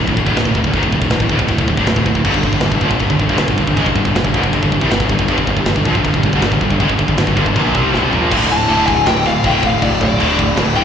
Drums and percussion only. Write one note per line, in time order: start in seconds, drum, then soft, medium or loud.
0.07 kick medium
0.17 kick medium
0.26 kick medium
0.36 snare loud
0.36 china medium
0.45 kick medium
0.55 kick medium
0.64 kick medium
0.73 kick medium
0.73 china medium
0.83 kick medium
0.93 kick medium
1.02 kick medium
1.10 snare loud
1.10 china medium
1.20 kick medium
1.29 kick medium
1.39 kick medium
1.48 kick medium
1.48 china medium
1.58 kick medium
1.68 kick medium
1.77 kick medium
1.87 snare loud
1.87 china medium
1.96 kick medium
2.06 kick medium
2.15 kick medium
2.25 kick medium
2.25 china medium
2.25 crash loud
2.34 kick medium
2.43 kick medium
2.53 kick medium
2.60 snare loud
2.60 china medium
2.72 kick medium
2.81 kick medium
2.91 kick medium
2.99 kick medium
2.99 china medium
3.10 kick medium
3.19 kick medium
3.29 kick medium
3.37 snare loud
3.37 china medium
3.48 kick medium
3.58 kick medium
3.67 kick medium
3.77 kick medium
3.77 china medium
3.86 kick medium
3.96 kick medium
4.05 kick medium
4.15 snare loud
4.15 china medium
4.25 kick medium
4.34 kick medium
4.43 kick medium
4.53 kick medium
4.53 china medium
4.63 kick medium
4.72 kick medium
4.81 kick medium
4.91 snare loud
4.91 china medium
5.00 kick medium
5.09 kick medium
5.19 kick medium
5.28 kick medium
5.28 china medium
5.38 kick medium
5.47 kick medium
5.57 kick medium
5.65 snare loud
5.65 china medium
5.76 kick medium
5.85 kick loud
5.95 kick medium
6.05 kick loud
6.05 china medium
6.14 kick medium
6.23 kick medium
6.33 kick medium
6.42 snare loud
6.42 china medium
6.52 kick medium
6.61 kick medium
6.70 kick medium
6.80 kick medium
6.80 china medium
6.89 kick medium
6.99 kick medium
7.08 kick medium
7.17 snare loud
7.17 china medium
7.27 kick medium
7.37 kick medium
7.46 kick medium
7.56 kick loud
7.56 china medium
7.75 kick loud
7.94 snare medium
8.13 floor tom medium
8.32 kick loud
8.32 crash loud
8.32 crash medium
8.50 crash medium
8.70 crash medium
8.88 kick medium
8.88 crash medium
9.06 snare loud
9.06 crash medium
9.25 crash medium
9.44 kick loud
9.44 crash medium
9.63 kick medium
9.63 crash medium
9.82 kick loud
9.82 crash medium
10.01 kick medium
10.01 crash medium
10.20 crash loud
10.39 kick loud
10.39 crash medium
10.57 snare loud
10.57 crash medium
10.76 crash medium